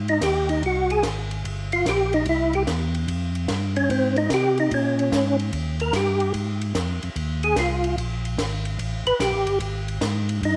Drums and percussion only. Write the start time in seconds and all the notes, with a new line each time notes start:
0.08 ride
0.21 kick, snare, hi-hat pedal, ride
0.49 ride
0.63 kick, ride
0.90 ride
1.03 kick, snare, hi-hat pedal, ride
1.31 ride
1.44 kick, ride
1.72 ride
1.85 kick, snare, hi-hat pedal, ride
2.13 ride
2.26 kick, ride
2.53 ride
2.67 kick, snare, hi-hat pedal, ride
2.95 ride
3.08 kick, ride
3.35 ride
3.48 kick, snare, hi-hat pedal, ride
3.76 ride
3.90 kick, ride
4.16 ride
4.30 kick, snare, hi-hat pedal, ride
4.58 ride
4.71 kick, ride
4.99 ride
5.12 kick, snare, hi-hat pedal, ride
5.39 ride
5.52 kick, ride
5.80 ride
5.93 kick, snare, hi-hat pedal, ride
6.20 ride
6.34 kick, ride
6.61 ride
6.75 kick, snare, hi-hat pedal, ride
7.03 ride
7.16 kick, ride
7.43 ride
7.56 kick, snare, hi-hat pedal, ride
7.84 ride
7.98 kick, ride
8.25 ride
8.38 kick, snare, hi-hat pedal, ride
8.65 ride
8.79 kick, ride
9.07 ride
9.20 kick, snare, hi-hat pedal, ride
9.47 ride
9.60 kick, ride
9.88 ride
10.01 kick, snare, hi-hat pedal, ride
10.29 ride
10.42 kick, ride